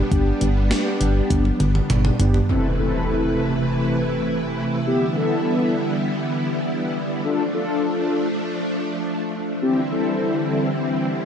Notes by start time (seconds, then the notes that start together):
Already playing: G3 B3 D4
0.11 G1 B3 D4 G4, kick, closed hi-hat
0.41 G1, closed hi-hat
0.71 B3 D4 G4, snare, closed hi-hat
1.01 G1, closed hi-hat
1.30 G1, kick, closed hi-hat, high tom
1.45 high tom
1.60 G1, closed hi-hat, mid tom
1.75 mid tom
1.90 G1, closed hi-hat, mid tom
2.05 mid tom
2.20 G1 B3 D4 G4, closed hi-hat, floor tom
2.34 floor tom
2.49 C3 E3 A3 C4 E4 A4 B4, impact
2.79 C4 E4 A4
4.87 D3 G3 B3 E4 G4
5.17 B3 E4 A4
7.24 F3 A3 D4 F4 A4
7.54 D4 F4 A4
9.62 D3 E3 G3 C4 E4 G4
9.92 C4 E4 A4